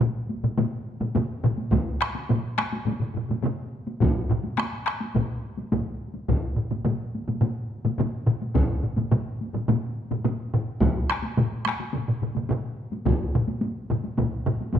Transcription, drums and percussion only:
0.01 taiko low-mid, taiko mid, taiko high
0.29 taiko high
0.44 taiko low-mid, taiko mid, taiko high
0.58 taiko low-mid, taiko mid, taiko high
1.01 taiko low-mid, taiko mid, taiko high
1.15 taiko low-mid, taiko mid, taiko high
1.44 taiko low-mid, taiko mid
1.57 taiko high
1.71 taiko, taiko low-mid, taiko mid, taiko high
2.01 taiko rim
2.15 taiko high
2.29 taiko low-mid, taiko mid, taiko high
2.58 taiko rim, taiko high
2.73 taiko high
2.85 taiko low-mid, taiko mid, taiko high
3.00 taiko low-mid, taiko mid
3.14 taiko low-mid, taiko mid
3.29 taiko low-mid, taiko mid, taiko high
3.42 taiko low-mid, taiko mid, taiko high
3.87 taiko high
4.00 taiko, taiko low-mid, taiko mid, taiko high
4.30 taiko low-mid, taiko mid
4.44 taiko high
4.58 taiko rim, taiko high
4.59 taiko rim
4.86 taiko rim
4.87 taiko rim
5.00 taiko high
5.15 taiko, taiko low-mid, taiko mid, taiko high
5.58 taiko high
5.72 taiko, taiko low-mid, taiko mid, taiko high
6.14 taiko high
6.28 taiko, taiko low-mid, taiko mid, taiko high
6.56 taiko low-mid, taiko mid
6.71 taiko low-mid, taiko mid, taiko high
6.85 taiko low-mid, taiko mid, taiko high
7.15 taiko high
7.28 taiko low-mid, taiko mid, taiko high
7.41 taiko low-mid, taiko mid, taiko high
7.85 taiko low-mid, taiko mid, taiko high
7.98 taiko low-mid, taiko mid, taiko high
8.27 taiko low-mid, taiko mid
8.42 taiko high
8.54 taiko, taiko low-mid, taiko mid, taiko high
8.83 taiko low-mid, taiko mid
8.97 taiko low-mid, taiko mid, taiko high
9.12 taiko low-mid, taiko mid, taiko high
9.41 taiko high
9.54 taiko low-mid, taiko mid, taiko high
9.68 taiko low-mid, taiko mid, taiko high
10.11 taiko low-mid, taiko mid, taiko high
10.24 taiko low-mid, taiko mid, taiko high
10.54 taiko low-mid, taiko mid
10.81 taiko, taiko low-mid, taiko mid, taiko high
11.10 taiko rim
11.22 taiko high
11.37 taiko low-mid, taiko mid, taiko high
11.65 taiko rim, taiko high
11.68 taiko rim
11.80 taiko high
11.93 taiko low-mid, taiko mid, taiko high
12.08 taiko low-mid, taiko mid
12.22 taiko low-mid, taiko mid
12.35 taiko low-mid, taiko mid, taiko high
12.49 taiko low-mid, taiko mid, taiko high
12.92 taiko high
13.05 taiko, taiko low-mid, taiko mid, taiko high
13.35 taiko low-mid, taiko mid
13.48 taiko high
13.61 taiko high
13.90 taiko low-mid, taiko mid, taiko high
14.04 taiko high
14.18 taiko, taiko low-mid, taiko mid, taiko high
14.46 taiko low-mid, taiko mid
14.61 taiko high
14.74 taiko, taiko low-mid, taiko mid, taiko high

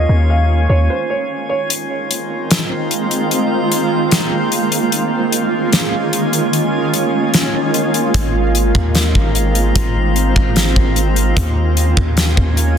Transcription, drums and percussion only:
1.70 closed hi-hat
2.11 closed hi-hat
2.51 snare, closed hi-hat
2.91 closed hi-hat
3.11 closed hi-hat
3.31 closed hi-hat
3.72 closed hi-hat
4.11 snare, closed hi-hat
4.52 closed hi-hat
4.72 closed hi-hat
4.92 closed hi-hat
5.32 closed hi-hat
5.73 snare, closed hi-hat
6.13 closed hi-hat
6.33 closed hi-hat
6.53 closed hi-hat
6.94 closed hi-hat
7.34 snare, closed hi-hat
7.74 closed hi-hat
7.94 closed hi-hat
8.14 kick, closed hi-hat
8.55 closed hi-hat
8.75 kick
8.95 snare, closed hi-hat
9.15 kick
9.35 closed hi-hat
9.55 closed hi-hat
9.75 kick, closed hi-hat
10.16 closed hi-hat
10.36 kick
10.56 snare, closed hi-hat
10.76 kick
10.96 closed hi-hat
11.16 closed hi-hat
11.37 kick, closed hi-hat
11.77 closed hi-hat
11.97 kick
12.17 snare, closed hi-hat
12.37 kick
12.57 closed hi-hat

